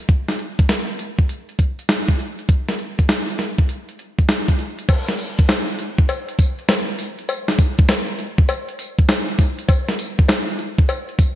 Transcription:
0.09 kick, closed hi-hat
0.28 snare, closed hi-hat
0.39 closed hi-hat
0.59 kick, closed hi-hat
0.69 snare, closed hi-hat
0.89 closed hi-hat
0.99 closed hi-hat
1.19 kick, closed hi-hat
1.29 closed hi-hat
1.49 closed hi-hat
1.59 kick, closed hi-hat
1.79 closed hi-hat
1.89 snare, closed hi-hat
2.09 kick, closed hi-hat
2.19 closed hi-hat
2.39 closed hi-hat
2.49 kick, closed hi-hat
2.68 snare, closed hi-hat
2.79 closed hi-hat
2.99 kick, closed hi-hat
3.09 snare, closed hi-hat
3.29 closed hi-hat
3.39 snare, closed hi-hat
3.58 kick, closed hi-hat
3.69 closed hi-hat
3.89 closed hi-hat
3.99 closed hi-hat
4.19 kick, closed hi-hat
4.29 snare, closed hi-hat
4.48 kick, closed hi-hat
4.59 closed hi-hat
4.79 closed hi-hat
4.89 kick, closed hi-hat, crash, tambourine, cowbell
5.08 snare, closed hi-hat
5.19 closed hi-hat, tambourine
5.39 kick, closed hi-hat
5.49 snare, closed hi-hat, tambourine, cowbell
5.69 closed hi-hat
5.79 closed hi-hat
5.98 kick, closed hi-hat
6.09 closed hi-hat, tambourine, cowbell
6.29 closed hi-hat
6.39 kick, closed hi-hat, tambourine
6.59 closed hi-hat
6.69 snare, closed hi-hat, tambourine, cowbell
6.89 closed hi-hat
6.99 closed hi-hat, tambourine
7.19 closed hi-hat
7.29 closed hi-hat, tambourine, cowbell
7.48 snare, closed hi-hat
7.59 kick, closed hi-hat, tambourine
7.78 kick, closed hi-hat
7.88 snare, closed hi-hat, tambourine, cowbell
8.08 closed hi-hat
8.19 closed hi-hat
8.38 kick, closed hi-hat
8.49 closed hi-hat, tambourine, cowbell
8.69 closed hi-hat
8.79 closed hi-hat, tambourine
8.99 kick, closed hi-hat
9.09 snare, closed hi-hat, tambourine, cowbell
9.29 closed hi-hat
9.39 kick, closed hi-hat, tambourine
9.59 closed hi-hat
9.69 kick, closed hi-hat, tambourine, cowbell
9.88 snare, closed hi-hat
9.99 closed hi-hat, tambourine
10.19 kick, closed hi-hat
10.28 snare, closed hi-hat, tambourine, cowbell
10.49 closed hi-hat
10.59 closed hi-hat
10.78 kick, closed hi-hat
10.89 closed hi-hat, tambourine, cowbell
11.09 closed hi-hat
11.19 kick, closed hi-hat, tambourine

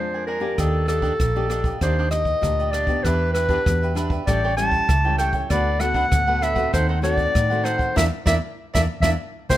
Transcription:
Already playing: F2 F3 G#3 D4 A#4 C5 D5 G#5
0.14 A#4 D5 G#5
0.27 D4 A#4 D5 G#5
0.40 A#3 D4 G4 A#4 D5 G#5
0.58 D#2 D#3 D4 G4 A4 D5 D#5, kick, cross-stick, closed hi-hat
0.87 A#3 D4 G4 A4 D5 D#5, cross-stick, closed hi-hat
1.02 D4 G4 D5 D#5, kick
1.20 A#1 A#2, kick, cross-stick, closed hi-hat
1.36 A#3 D4 G4 D5 D#5
1.49 A#3 D4 G4 D5 D#5, cross-stick, closed hi-hat
1.64 G4 D5 D#5, kick, closed hi-hat
1.81 D#2 D#3 A#3 D4 G4 C5 D5 D#5, kick, cross-stick, closed hi-hat
1.99 D4 G4 D5 D#5
2.11 G4 D#5, cross-stick, closed hi-hat
2.25 kick
2.41 D2 A#2 A#3 D4 G4, kick, cross-stick, closed hi-hat
2.59 G4 D5 D#5, closed hi-hat
2.71 D4 G4 D5 D#5, cross-stick, closed hi-hat
2.87 B3 D4 G4 D5 D#5, kick
3.04 E2 E3 D4 G4 B4 E5, kick, cross-stick, closed hi-hat
3.33 D4 G4 B4 E5, cross-stick, closed hi-hat
3.48 B3 D4 G4 B4 E5, kick, closed hi-hat
3.66 E2 B2, kick, cross-stick, closed hi-hat
3.82 G4 B4 E5, closed hi-hat
3.95 B3 D4 G4 B4 E5, cross-stick, closed hi-hat
4.10 G4 B4 E5, kick
4.26 A1 A2 G3 C#4 E4 G4 A4 C#5 D5 G5, kick, cross-stick, closed hi-hat
4.44 G4 A4 C#5 G5
4.57 G3 C#4 E4 G4 A4 C#5 G5 A5, cross-stick, closed hi-hat
4.72 kick
4.88 C#2 E3, kick, cross-stick, closed hi-hat
5.04 G3 C#4 E4 A4 C#5 G5
5.18 G4 A4 C#5 G5, cross-stick, closed hi-hat
5.33 A4 C#5 G5, kick, closed hi-hat
5.49 D2 D3 A3 B3 D4 F#4 A4 B4 D5 F#5, kick, cross-stick, closed hi-hat
5.80 A3 B3 D4 F#4 A4 B4 F#5, cross-stick, closed hi-hat
5.94 D4 A4 B4 F#5, kick
6.11 D2 A2, kick, cross-stick, closed hi-hat
6.27 A3 B3 F#4 A4 B4 F#5
6.42 D4 A4 B4 E5 F#5, cross-stick, closed hi-hat
6.55 A3 C4 F#4 A4 B4 F#5, kick, closed hi-hat
6.73 D#2 D#3 D#4 A4 C5 F#5, kick, cross-stick, closed hi-hat
6.89 D#4 A4 C5 F#5
7.02 A3 C4 D#4 F#4 A4 C5 D5 F#5, cross-stick, closed hi-hat
7.18 kick
7.35 A2 D#3, kick, cross-stick, closed hi-hat
7.50 A3 C4 F#4 A4 C5 F#5, closed hi-hat
7.63 D#4 A4 C5 F#5, cross-stick, closed hi-hat
7.78 A4 C5 F#5, kick
7.96 E2 A#3 D4 E4 A#4 D5 E5, kick, snare
8.26 E2 A#3 D4 E4 A#4 D5 E5, kick, snare
8.74 E2 A#3 D4 E4 A#4 D5 E5, kick, snare
9.00 E2 A#3 D4 E4 A#4 D5 E5, kick, snare
9.49 C2 A#3 C4 E4 G4 A#4 C5, kick, snare

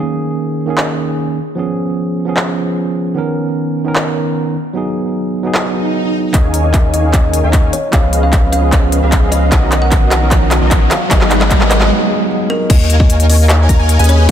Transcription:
Already playing: D#3 A#3
0.00 C#4 G#4
0.66 D#3 A#3 C#4
0.70 G#4
0.78 clap
1.55 F3 B3 C#4
1.59 G#4
2.25 F3 B3 C#4 G#4
2.37 clap
3.14 D#3 B3 C#4
3.18 A#4
3.84 D#3 B3 C#4
3.88 A#4
3.96 clap
4.73 F#3 B3 D#4 G#4
5.43 F#3 B3 D#4
5.47 G#4
5.55 clap, swell
6.32 D#2 D#3 A#3 C#4 D#4 A#4 C#5 D#5 F5 G#5, kick, clap, closed hi-hat, riser
6.36 G#4
6.54 closed hi-hat
6.64 D#5
6.74 kick, clap, closed hi-hat
6.94 D#5, closed hi-hat
7.02 D#3 A#3 C#4
7.06 G#4
7.13 kick, clap, closed hi-hat
7.33 closed hi-hat
7.44 D#2 D#4 A#4 C#5 F5 G#5
7.53 kick, clap, closed hi-hat
7.73 C#5, closed hi-hat
7.91 C#2 F3 B3 C#4 G#4 B4 D#5 F5, kick, clap, closed hi-hat
8.13 closed hi-hat
8.23 F5
8.33 kick, clap, closed hi-hat
8.52 F5, closed hi-hat
8.61 F3 B3 C#4
8.65 G#4
8.72 kick, clap, closed hi-hat
8.92 closed hi-hat
9.03 C#2 C#4 G#4 B4 D#5 F5
9.12 kick, clap, closed hi-hat
9.32 D#5, closed hi-hat
9.50 B1 D#3 B3 C#4 F#4 A#4 C#5 D#5 F#5, kick, clap, closed hi-hat
9.72 clap, closed hi-hat
9.82 F#5
9.92 kick, clap, closed hi-hat
10.11 F#5, clap, closed hi-hat
10.20 D#3 B3 C#4
10.24 A#4
10.31 kick, clap, closed hi-hat
10.51 clap, closed hi-hat
10.61 B1 B3 F#4 A#4 C#5 D#5
10.71 kick, clap, closed hi-hat
10.91 F5, clap, closed hi-hat
11.09 G#1 F#3 G#3 B3 D#4 G#4 A#4 B4 D#5 F#5, kick, clap, closed hi-hat
11.21 clap
11.31 clap, closed hi-hat
11.41 D#5, clap
11.51 kick, clap, closed hi-hat
11.61 clap
11.71 D#5, clap, closed hi-hat
11.79 F#3 B3 D#4 G#4, clap
12.50 A#4
12.70 D#2 D#4 A#4 C#5 D#5 F5 G#5, kick, closed hi-hat, crash
12.90 closed hi-hat
13.00 D#5, kick
13.10 closed hi-hat
13.20 closed hi-hat
13.30 D#5, open hi-hat
13.49 clap, closed hi-hat
13.69 D#2 D#4 A#4 C#5 F5 A#5, kick, closed hi-hat
13.79 D#2 D#4 A#4 C#5 F5 G#5
13.89 closed hi-hat
13.99 D#2 C#4 G#4 B4 D#5 G#5, closed hi-hat
14.04 closed hi-hat
14.09 C#5, closed hi-hat

